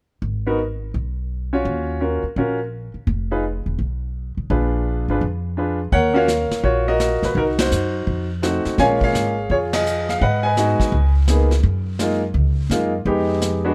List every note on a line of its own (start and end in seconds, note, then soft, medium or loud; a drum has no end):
0.22 0.90 G#1 medium
0.47 0.58 B3 medium
0.47 0.58 D#4 soft
0.47 0.58 F#4 soft
0.47 0.58 A#4 medium
0.94 1.62 B1 medium
1.53 1.99 C#4 medium
1.53 1.99 F4 medium
1.53 1.99 F#4 soft
1.53 1.99 C#5 medium
1.65 2.20 D#2 medium
2.00 2.21 C#4 soft
2.00 2.22 F4 soft
2.00 2.22 F#4 soft
2.00 2.22 A#4 soft
2.23 muted upright bass stroke soft
2.36 2.91 A#1 medium
2.36 2.58 C#4 medium
2.36 2.58 F4 soft
2.36 2.58 F#4 soft
2.36 2.58 A#4 medium
2.94 muted upright bass stroke soft
3.07 3.62 F1 medium
3.31 3.43 D#4 medium
3.31 3.43 F4 soft
3.31 3.43 G#4 soft
3.31 3.43 B4 medium
3.66 3.78 E1 medium
3.79 4.33 B1 medium
4.37 4.50 B1 medium
4.50 5.05 A#1 medium
4.50 5.04 D4 soft
4.50 5.05 F4 soft
4.50 5.04 G#4 soft
4.50 5.05 B4 medium
5.08 5.21 G#1 medium
5.08 5.21 D4 medium
5.08 5.21 F4 soft
5.08 5.21 G#4 soft
5.08 5.22 B4 medium
5.21 5.89 F2 medium
5.57 5.78 D4 soft
5.57 5.78 F4 soft
5.57 5.78 G#4 soft
5.57 5.79 B4 soft
5.92 6.47 D#2 medium
5.92 6.16 A#4 medium
5.92 6.16 C#5 medium
5.92 6.16 F#5 loud
5.92 brush sweep soft
5.92 kick soft
6.14 6.26 A#3 medium
6.14 6.26 C#4 medium
6.14 6.27 F4 medium
6.14 6.27 F#4 medium
6.14 6.84 A#4 medium
6.14 6.63 C#5 medium
6.14 6.61 F5 medium
6.28 snare soft
6.28 hi-hat pedal medium
6.51 muted upright bass stroke soft
6.51 snare soft
6.63 7.18 A#1 medium
6.63 7.32 F4 medium
6.63 6.87 F#4 medium
6.63 6.88 C#5 medium
6.63 brush sweep soft
6.63 kick soft
6.88 7.33 F#4 medium
6.88 7.33 A#4 medium
6.88 7.24 D#5 medium
7.00 snare soft
7.00 hi-hat pedal soft
7.23 7.34 A#1 medium
7.23 7.37 B4 medium
7.23 snare soft
7.35 7.68 C2 medium
7.35 7.59 D#4 medium
7.35 7.59 F#4 medium
7.35 7.43 A#4 medium
7.35 brush sweep soft
7.35 kick soft
7.59 8.27 D#4 soft
7.59 8.27 F#4 medium
7.59 8.27 C5 medium
7.59 snare medium
7.59 ride medium
7.71 8.05 F#2 medium
7.71 hi-hat pedal medium
8.07 8.61 F2 medium
8.07 brush sweep soft
8.07 kick soft
8.42 8.78 A3 medium
8.42 8.78 C4 soft
8.42 8.78 D#4 soft
8.42 8.79 F#4 medium
8.42 snare soft
8.42 hi-hat pedal soft
8.65 muted upright bass stroke soft
8.65 snare soft
8.78 9.11 A#1 medium
8.78 9.33 G#3 medium
8.78 9.33 A#3 medium
8.78 9.33 C#4 medium
8.78 9.33 F4 medium
8.78 9.03 C#5 medium
8.78 9.02 F5 medium
8.78 8.84 G#5 loud
8.78 brush sweep medium
8.78 kick soft
8.78 snare soft
9.01 9.51 G#4 medium
9.01 9.50 C#5 medium
9.01 9.52 F5 medium
9.01 kick soft
9.13 9.47 G#1 medium
9.13 snare medium
9.13 hi-hat pedal soft
9.50 10.17 F2 medium
9.50 10.18 F4 medium
9.50 9.73 G#4 medium
9.50 9.56 C#5 medium
9.50 brush sweep soft
9.50 kick soft
9.73 10.19 G#4 medium
9.73 10.06 D#5 medium
9.73 snare medium
9.73 ride medium
9.86 hi-hat pedal soft
10.09 10.18 F5 medium
10.09 snare soft
10.20 10.76 G#2 medium
10.20 10.45 B4 medium
10.20 10.44 D#5 medium
10.20 10.22 F5 medium
10.20 10.45 F#5 medium
10.20 brush sweep soft
10.20 kick soft
10.43 11.12 B4 medium
10.43 11.12 D#5 soft
10.43 11.11 G#5 medium
10.57 10.92 G#3 medium
10.57 10.93 B3 soft
10.57 10.93 D#4 medium
10.57 10.93 F#4 medium
10.57 snare medium
10.57 hi-hat pedal soft
10.80 muted upright bass stroke soft
10.80 kick soft
10.80 snare soft
10.92 11.60 C#2 medium
10.92 brush sweep soft
10.92 kick soft
11.28 11.49 A#3 soft
11.28 11.49 B3 soft
11.28 11.49 D#4 soft
11.28 11.49 G#4 medium
11.28 snare soft
11.28 hi-hat pedal soft
11.51 snare soft
11.63 12.31 F#2 medium
11.63 brush sweep soft
11.63 kick soft
11.99 12.20 G#3 medium
11.99 12.21 A#3 soft
11.99 12.20 D#4 soft
11.99 12.21 F4 medium
11.99 snare medium
11.99 hi-hat pedal soft
12.34 12.68 C#2 medium
12.34 brush sweep soft
12.34 kick soft
12.70 13.03 F#2 medium
12.70 12.91 G#3 medium
12.70 12.91 A#3 soft
12.70 12.92 D#4 soft
12.70 12.92 F4 medium
12.70 snare soft
12.70 hi-hat pedal soft
13.05 13.73 F2 medium
13.05 13.60 G#3 medium
13.05 13.60 B3 soft
13.05 13.60 D#4 medium
13.05 13.60 G4 medium
13.05 brush sweep soft
13.05 kick soft
13.42 snare medium
13.42 hi-hat pedal medium
13.65 13.74 G#3 medium
13.65 13.74 B3 medium
13.65 13.74 D4 medium
13.65 13.74 F#4 medium